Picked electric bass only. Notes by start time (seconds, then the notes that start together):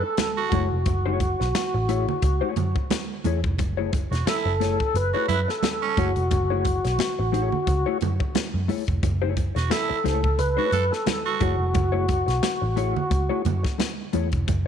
0.52 F#1
0.72 F1
0.86 F#1
1.41 B1
1.74 A1
2.23 C#2
2.56 F#2
3.25 E2
3.44 F1
3.59 F#1
4.11 E1
4.26 muted picked electric bass stroke
4.45 F#1
4.94 F#1
5.29 F#2
5.98 F#1
6.17 F1
6.32 F#1
6.85 B1
7.19 A1
7.67 C#2
8.02 F#2
8.54 F#2
8.88 F1
9.03 F#1
9.56 E1
9.90 muted picked electric bass stroke
10.05 C#2
10.38 C#2
10.72 F#2
11.41 F#1
11.58 F1
11.75 F#1
12.28 B1
12.62 A1
13.11 C#2
13.45 F#2
14.14 E2
14.33 F1
14.48 F#1